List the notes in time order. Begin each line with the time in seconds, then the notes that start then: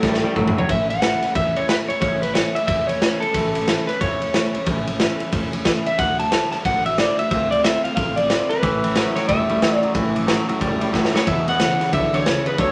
Already playing: A4
0.03 A1 A2 E3 G3 A3 C#4 E4, kick, snare
0.14 snare
0.24 A2 G3 A3 C#4 E4, muted upright bass stroke
0.36 G1 A2 E3 F#3 A3 C#4 E4, kick, mid tom
0.48 mid tom
0.57 A2 F#3 A3 C#4 E4 C#5, floor tom
0.69 A1 A2 E3 A3 C#4 E4 E5, kick, ride
0.90 A3 C#4 E4 F#5, ride
1.02 A2 E3 A3 C#4 E4, snare, ride
1.22 A3 C#4 E4, muted upright bass stroke, snare, ride
1.35 E2 E3 A3 C#4 E4 E5, kick, ride
1.55 A3 C#4 E4 C#5, ride
1.67 A2 E3 A3 C#4 E4 B4, snare, ride
1.88 A3 C#4 E4 C#5, muted upright bass stroke, ride
2.00 A1 A2 E3 A3 C#4 E4 C#5, kick, ride
2.22 A3 C#4 E4 B4, ride
2.34 A2 E3 A3 C#4 E4 C#5, snare, ride
2.54 A3 C#4 E4 E5, muted upright bass stroke, ride
2.67 E2 E3 A3 C#4 E4 E5, kick, ride
2.87 C#4 E4 C#5, ride
2.92 A3
3.01 A2 E3 A3 C#4 E4, snare, ride
3.20 E4 A4, muted upright bass stroke, ride
3.25 A3 C#4
3.34 A1 A2 E3 A3 C#4 E4, kick, ride
3.55 A3 C#4 E4, ride
3.68 A2 E3 A3 C#4 E4, snare, ride
3.87 A3 C#4 E4 B4, muted upright bass stroke, snare, ride
4.00 E2 E3 A3 C#4 E4 C#5, kick, ride
4.21 A3 C#4 E4, ride
4.33 A2 E3 A3 C#4 E4, snare, ride
4.54 A3 C#4 E4, muted upright bass stroke, ride
4.66 A1 A2 E3 A3 C#4 E4, kick, ride
4.87 A3 C#4 E4, ride
5.00 A2 E3 A3 C#4 E4, snare, ride
5.20 A3 C#4 E4, muted upright bass stroke, ride
5.32 E2 E3 A3 C#4 E4, kick, ride
5.53 A3 C#4 E4, ride
5.65 A2 E3 A3 C#4 E4, kick, snare, ride
5.86 A3 C#4 E4 E5, muted upright bass stroke, ride
5.99 D2 D3 A3 D4 F#4 F#5, kick, ride
6.19 A3 D4 F#4 A5, ride
6.32 D3 A3 D4 F#4, snare, ride
6.52 A3 D4 F#4 A5, muted upright bass stroke, snare, ride
6.65 A1 D3 A3 D4 F#4 F#5, kick, ride
6.86 A3 D4 F#4 E5, ride
6.98 D3 A3 D4 F#4 D5, snare, ride
7.19 A3 D4 F#4 E5, muted upright bass stroke, ride
7.31 D2 D3 A3 C4 F4 E5, kick, ride
7.51 A3 C4 F4 D5, ride
7.64 D3 A3 C4 F4 E5, snare, ride
7.84 A3 C4 F4 F5, muted upright bass stroke, ride
7.96 A1 D3 A3 C4 F4 F5, kick, ride
8.16 C4 F4 D5, ride
8.21 A3
8.30 D3 A3 C4 F4, snare, ride
8.49 C4 F4 B4, muted upright bass stroke, ride
8.54 A3
8.63 A1 A2 E3 A3 C#4 E4, kick, ride
8.83 A2 E3 A3 C#4 E4, ride
8.96 A2 E3 F#3 A3 C#4 E4, snare, ride
9.15 A2 F#3 A3 C#4 E4 C#5, muted upright bass stroke, snare, ride
9.28 E1 A2 E3 G3 A3 C#4 E4 E5, kick, ride
9.48 A2 G3 A3 C#4 E4, ride
9.61 A2 E3 F#3 A3 C#4 E4, snare, ride
9.75 D5
9.82 A2 F#3 A3 C#4 E4, muted upright bass stroke, ride
9.94 A1 A2 E3 A3 C#4 E4, kick, ride
10.15 A2 E3 A3 C#4 E4, ride
10.27 A2 E3 F#3 A3 C#4 E4, snare, ride
10.48 A2 F#3 C#4 E4, muted upright bass stroke, ride
10.52 A3
10.61 E1 A2 E3 G3 A3 C#4 E4, kick, ride
10.80 A2 G3 C#4 E4, ride
10.85 A3
10.93 A2 E3 F#3 A3 C#4, kick, snare
10.97 E4
11.05 snare
11.14 A2 F#3 A3 C#4 E4 C#5, muted upright bass stroke, snare
11.27 E1 E2 B2 E3 G#3 B3 E4 E5, kick, ride
11.47 E2 B2 E3 G#3 B3 E4 F#5, ride
11.60 E2 B2 C#3 E3 G#3 B3 E4, snare, ride
11.80 E2 C#3 E3 G#3 B3 E4, muted upright bass stroke, snare, ride
11.92 B1 E2 D3 E3 G#3 B3 E4 E5, kick, ride
12.13 E2 D3 E3 G#3 B3 E4 C#5, ride
12.26 E2 B2 C#3 E3 G#3 B3 E4, snare, ride
12.46 E2 C#3 E3 G#3 B3 E4 B4, muted upright bass stroke, ride
12.58 D2 D3 A3 D4 F#4 C#5, kick, ride